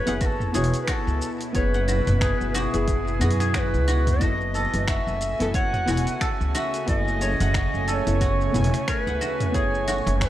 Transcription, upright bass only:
0.07 F#1
0.55 E1
1.07 C#2
1.54 F#1
2.07 F#1
2.40 F#1
2.74 F#1
3.21 F#2
3.74 C#2
4.21 F#1
4.74 F#1
5.07 F#1
5.41 F#1
5.88 E1
6.41 C#2
6.88 F#1
7.40 F#1
7.74 F#1
8.07 F#1
8.54 E1
9.07 C#2
9.54 F#1
10.06 F#1

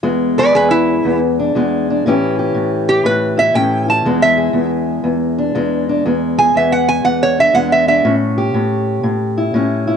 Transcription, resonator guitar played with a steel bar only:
0.38 B4 D5
0.55 G#4 B4
0.71 E4
2.89 G4
3.06 B4
3.39 E5
3.55 G5
3.90 A5
4.22 E5
6.39 G#5
6.57 E5
6.72 F#5
6.89 G#5
7.05 F#5
7.23 C#5
7.40 E5
7.55 F#5
7.72 E5
7.88 E5

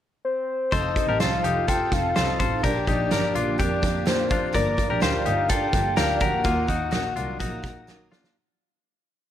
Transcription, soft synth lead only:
0.25 C5
0.72 D#5
1.21 F5
1.69 G5
1.93 F5
2.40 F5
2.64 D5
2.89 D5
4.08 C5
4.55 D5
5.02 F5
5.50 G5
5.97 F5
6.22 F#5

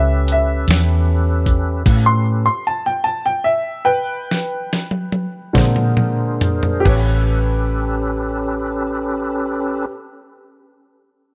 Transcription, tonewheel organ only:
Already playing: C#4 G4 A4 B4
1.85 C#4 G4 A4 B4
5.54 D4 G#4 A#4 C5
6.86 C#4 G4 A4 B4

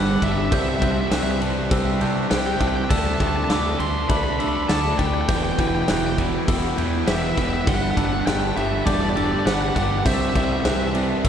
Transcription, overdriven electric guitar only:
Already playing: G2 D3 G3
0.21 G2 D3 G3
0.51 C3 G3 C4
0.81 C3 G3 C4
1.11 C3 G3 C4
1.40 C3 G3 C4
1.70 C3 G3 C4
2.00 C3 G3 C4
2.30 C3 G3 C4
2.60 C3 G3 C4
2.90 D3 A3 D4
3.19 D3 A3 D4
3.49 D3 A3 D4
3.79 D3 A3 D4
4.09 D3 A3 D4
4.39 D3 A3 D4
4.69 D3 A3 D4
4.99 D3 A3 D4
5.28 E2 B2 E3
5.58 E2 B2 E3
5.87 E2 B2 E3
6.18 E2 B2 E3
6.47 E2 B2 E3
6.77 E2 B2 E3
7.07 E2 B2 E3
7.37 E2 B2 E3
7.67 G2 D3 G3
7.97 G2 D3 G3
8.27 G2 D3 G3
8.56 G2 D3 G3
8.86 G2 D3 G3
9.16 G2 D3 G3
9.45 G2 D3 G3
9.75 G2 D3 G3
10.05 C3 G3 C4
10.35 C3 G3 C4
10.64 C3 G3 C4
10.94 C3 G3 C4
11.24 C3 G3

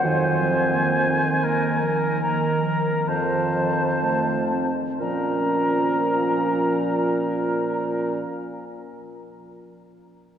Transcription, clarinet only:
0.03 D#3
0.38 F3
0.72 A#3
1.07 C4
1.43 A#3
1.82 F3
2.23 D#3
2.63 F3
3.08 D#3
3.53 F3
4.03 A3
4.53 C4
4.99 C#4

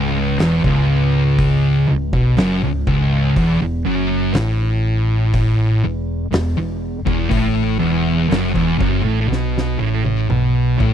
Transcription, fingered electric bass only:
Already playing: C#1
0.41 E1
0.65 C#1
1.91 C#1
2.14 B1
2.39 F#1
2.64 C#1
2.87 C#1
3.36 E1
3.61 E1
3.86 F#1
4.35 A1
5.85 E1
6.34 E1
6.58 E1
7.07 E1
7.32 A1
7.82 E1
8.30 F#1
8.56 E1
8.80 F#1
9.07 A1
9.30 B1
9.80 A1
10.30 B1
10.80 A1

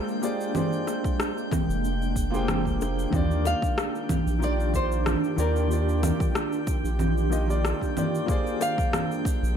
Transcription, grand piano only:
Already playing: A#3 F4 G4 G#4 C5 D5
0.22 A#3 F4 G4 G#4 C5 D5
0.53 A#3 F4 G4 G#4
0.57 C5 D5
2.30 A#3 F4 G4
2.35 G#4 C5 G5
3.10 D#3 A#3 F4
3.15 G4 D5
4.39 D#3 A#3 F4
4.43 G4 D5
5.36 D#3 A#3 F4 G4 D5
5.67 D#3 A#3 F4
5.72 G4 D5
7.30 D#3 A#3 F4 G4 D#5
7.48 D#3 A#3 F4 G4 D5
7.96 D#3 A#3 F4 G4 D5
8.26 A#3 F4 G4 G#4
8.31 C5 D5

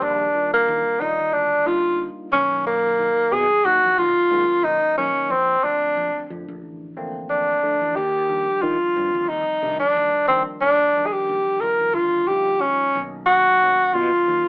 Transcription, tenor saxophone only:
0.03 D4
0.53 A#3
1.01 D#4
1.33 D4
1.67 F4
2.32 C#4
2.66 A#3
3.32 G#4
3.65 F#4
3.98 F4
4.64 D#4
4.97 C#4
5.30 C4
5.64 D4
7.30 D4
7.95 G4
8.61 F4
9.28 D#4
9.79 D4
10.28 C4
10.61 D4
11.06 G#4
11.12 G4
11.60 A#4
11.94 F4
12.27 G4
12.61 C#4
13.26 F#4
13.94 F4

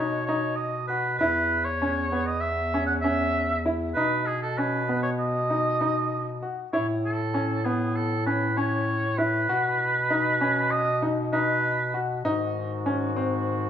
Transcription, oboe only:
Already playing: C#5
0.26 C#5
0.56 D#5
0.88 B4
1.18 B4
1.65 C#5
2.26 D#5
2.40 E5
2.87 F#5
3.02 E5
3.94 B4
4.27 G#4
4.42 A4
4.58 B4
5.03 C#5
5.19 D#5
6.73 C#5
7.05 A4
7.65 G#4
7.96 A4
8.26 B4
8.57 C#5
9.18 B4
10.71 D#5
11.33 B4

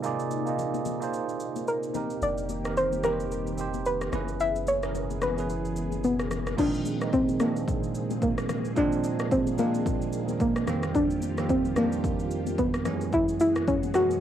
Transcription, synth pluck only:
1.68 A#4
2.23 D5
2.77 C5
3.04 A#4
3.86 B4
4.41 E5
4.68 C#5
5.23 B4
6.04 B3
6.59 D4
7.13 C4
7.41 A#3
8.23 A#3
8.77 D4
9.32 C4
9.59 A#3
10.41 A#3
10.95 D4
11.50 C4
11.77 A#3
12.59 B3
13.14 E4
13.41 E4
13.68 C#4
13.95 F#4

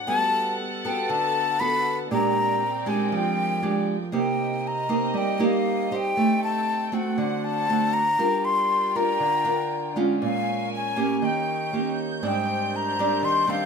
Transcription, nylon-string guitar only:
0.07 G3 B3 F#4 A4
0.85 B3 F#4 A4
1.09 D3
1.60 B3 F#4 A4
2.11 A#2 G#3 D4 G4
2.86 G#3 D4 G4
3.12 F3
3.62 G#3 D4 G4
4.12 C3 A#3 D#4 G4
4.89 A#3 D#4 G4
5.14 G3
5.39 A#3 D#4 G4
5.91 D#4 G4 C5
6.17 A3
6.92 A3 C4 F#4
7.18 D3
7.69 A3 C4 F#4
8.19 G3 D4 F4 A#4
8.95 D4 F4 A#4
9.20 D3
9.45 D4 F4 A#4
9.96 G#3 C#4 F4
10.22 A#2
10.96 A#3 C#4 G4
11.22 D#3
11.73 A#3 C#4 G4
12.23 G#2 G3 C4 D4
12.99 G3 C4 D4
13.22 D#3
13.47 G3 C4 D4

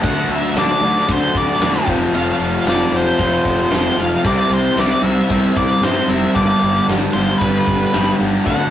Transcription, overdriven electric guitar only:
0.04 D3 A3 D4
0.56 D3 A3 D4
0.82 D3 A3 D4
1.08 D3 A3 D4
1.62 D3 A3 D4
1.88 F2 C3 F3
2.13 F2 C3 F3
2.67 F2 C3 F3
2.93 F2 C3 F3
3.19 F2 C3 F3
3.71 F2 C3 F3
3.97 F2 C3 F3
4.25 C3 G3 C4
4.77 C3 G3 C4
5.04 C3 G3 C4
5.30 C3 G3 C4
5.83 C3 G3 C4
6.08 C3 G3 C4
6.34 G2 D3 G3
6.88 G2 D3 G3
7.14 G2 D3 G3
7.40 G2 D3 G3
7.92 G2 D3 G3
8.19 G2 D3 G3
8.44 D3 A3 D4

